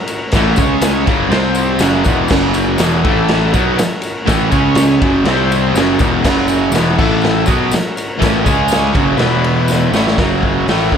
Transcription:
Already playing: transistor combo organ C#4 F#4 A#4
0.07 ride, tambourine
0.32 picked electric bass A1, distorted electric guitar A2 E3 A3, kick, snare, ride, tambourine
0.56 picked electric bass C#2, distorted electric guitar C#3 G#3 C#4, transistor combo organ C#4 G#4 C#5, kick, ride, tambourine
0.81 snare, ride, tambourine
1.05 picked electric bass F#1, distorted electric guitar F#2 C#3 F#3, kick, ride, tambourine
1.29 picked electric bass C2, distorted electric guitar C3 G3 C4, transistor combo organ C4 G4 C5, snare, ride, tambourine
1.55 transistor combo organ G5, ride, tambourine
1.79 picked electric bass F#1, distorted electric guitar F#2 C#3 F#3, transistor combo organ C#4 F#4 A#4 F#5, snare, ride, tambourine
2.04 picked electric bass E1, distorted electric guitar E2 B2 E3, transistor combo organ D#5, kick, ride, tambourine
2.28 picked electric bass F#1, distorted electric guitar F#2 C#3 F#3, kick, snare, crash, tambourine
2.54 ride, tambourine
2.78 picked electric bass E1, distorted electric guitar E2 B2 E3, snare, ride, tambourine
3.03 picked electric bass A1, distorted electric guitar A2 E3 A3, transistor combo organ A3 E4 A4, kick, ride
3.28 snare, ride, tambourine
3.50 distorted electric guitar B2, transistor combo organ C#4 F#4 A#4, ride, tambourine
3.54 picked electric bass B1, distorted electric guitar F#3 B3, kick
3.78 snare, ride, tambourine
4.02 ride, tambourine
4.26 picked electric bass A1, distorted electric guitar A2 E3 A3, kick, snare, ride, tambourine
4.50 picked electric bass C#2, distorted electric guitar C#3 G#3 C#4, transistor combo organ C#4 G#4 C#5, kick, ride, tambourine
4.75 snare, ride, tambourine
5.00 picked electric bass F#1, distorted electric guitar F#2 C#3 F#3, kick, ride
5.24 picked electric bass C2, distorted electric guitar C3 G3 C4, transistor combo organ C4 G4 C5, snare, ride, tambourine
5.52 ride, tambourine
5.73 picked electric bass F#1, distorted electric guitar F#2 C#3 F#3, transistor combo organ C#4 F#4 A#4, ride, tambourine
5.78 snare
5.99 picked electric bass E1, distorted electric guitar E2 B2 E3, kick, ride, tambourine
6.24 picked electric bass F#1, distorted electric guitar F#2 C#3 F#3, kick, snare, crash, tambourine
6.48 ride, tambourine
6.72 picked electric bass E1, distorted electric guitar E2 B2 E3, snare, ride, tambourine
6.97 picked electric bass A1, distorted electric guitar A2 E3 A3, transistor combo organ A3 E4 A4, kick, crash
7.21 snare, tambourine
7.45 distorted electric guitar B2 F#3 B3, transistor combo organ C#4 F#4 A#4, kick, ride, tambourine
7.49 picked electric bass B1
7.71 snare, ride, tambourine
7.97 ride, tambourine
8.18 picked electric bass A1, distorted electric guitar A2 E3 A3, kick, ride, tambourine
8.23 snare
8.44 picked electric bass C#2, distorted electric guitar C#3 G#3 C#4, transistor combo organ C#4 G#4 C#5, kick, ride, tambourine
8.68 ride, tambourine
8.73 snare
8.93 picked electric bass F#1, distorted electric guitar F#2 C#3 F#3, kick, ride, tambourine
9.17 picked electric bass E1, distorted electric guitar E2 B2 E3, transistor combo organ B3 E4 B4, snare, ride, tambourine
9.44 ride
9.68 snare, tambourine
9.92 picked electric bass A1, distorted electric guitar A2 E3 A3, snare, tambourine
10.07 snare
10.15 picked electric bass F#1, distorted electric guitar F#2 C#3 F#3, transistor combo organ C#4 F#4 A#4, kick, snare, open hi-hat
10.43 kick
10.66 picked electric bass A1, distorted electric guitar A2 E3 A3, snare, open hi-hat
10.92 picked electric bass F#1, distorted electric guitar F#2 C#3 F#3, kick

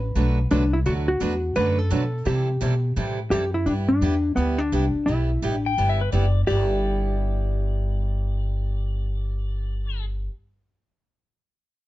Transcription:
Already playing: upright bass A1, hollow-body jazz guitar B4
0.15 upright bass B1, steel-string acoustic guitar D3 F#3 A3 D4 F#4 B4
0.51 upright bass C2, steel-string acoustic guitar D3 F#3 A3 D4 F#4 B4, hollow-body jazz guitar D4
0.73 hollow-body jazz guitar E4
0.86 upright bass D2, steel-string acoustic guitar D3 F#3 A3 D4 F#4 B4, hollow-body jazz guitar F#4
1.08 hollow-body jazz guitar F#4
1.20 upright bass E2, steel-string acoustic guitar D3 F#3 A3 D4 F#4 B4
1.56 upright bass F#2, steel-string acoustic guitar D3 F#3 A3 D4 F#4 B4, hollow-body jazz guitar B4
1.79 hollow-body jazz guitar A4
1.90 upright bass B2, steel-string acoustic guitar D3 F#3 A3 D4 F#4 B4
2.25 steel-string acoustic guitar C3 E3 G3 C4 E4 A4, upright bass C3, hollow-body jazz guitar G4
2.61 upright bass B2, steel-string acoustic guitar C3 E3 G3 C4 E4 A4
2.96 upright bass A2, steel-string acoustic guitar C3 E3 G3 C4 E4 A4
3.31 upright bass F#2, steel-string acoustic guitar C3 E3 G3 C4 E4 A4, hollow-body jazz guitar G4
3.54 hollow-body jazz guitar E4
3.66 upright bass G2, steel-string acoustic guitar G3 B3 E4 G4, hollow-body jazz guitar D4
3.89 hollow-body jazz guitar D4
4.01 upright bass E2, steel-string acoustic guitar G3 B3 E4 G4
4.36 upright bass D2, steel-string acoustic guitar G3 B3 E4 G4, hollow-body jazz guitar B3
4.58 hollow-body jazz guitar D4
4.72 upright bass C2, steel-string acoustic guitar G3 B3 E4 G4
4.95 muted upright bass stroke
5.06 upright bass B1, steel-string acoustic guitar G3 B3 E4 G4, hollow-body jazz guitar E4
5.42 upright bass A1, steel-string acoustic guitar G3 B3 E4 G4
5.56 hollow-body jazz guitar D4
5.66 pedal steel guitar G5
5.78 upright bass G1, steel-string acoustic guitar G3 B3 E4 G4
5.89 pedal steel guitar E5
6.01 pedal steel guitar B4
6.12 upright bass F#1, steel-string acoustic guitar G3 B3 E4 G4, pedal steel guitar D5
6.47 upright bass G1, steel-string acoustic guitar G3 B3 E4 G4, hollow-body jazz guitar G4, pedal steel guitar D5

